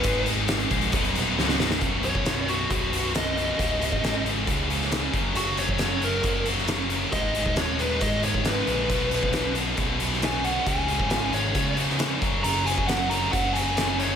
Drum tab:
HH |x-x-xxxxxxx-----|x-x-x-x-x-x-x-x-|x-x-x-x-x-x-x-x-|x-x-x-x-x-x-x-x-|
SD |----o-------oooo|----o-------o---|----o------oo---|----o------oo---|
BD |o-----o-o-------|o--o----o-------|o--o----o-----o-|---o----o-------|

HH |x-x-x-x-x-x-x-x-|x-x-x-x-x-x-x-x-|x-x-x-x-x-x-x-x-|x-x-x-x-x-x-x-x-|
SD |----o-------o---|----o------oo---|----o------oo---|----o-------o---|
BD |o--o----o--o----|o--o----o-------|o--o----o-----o-|---o----o-------|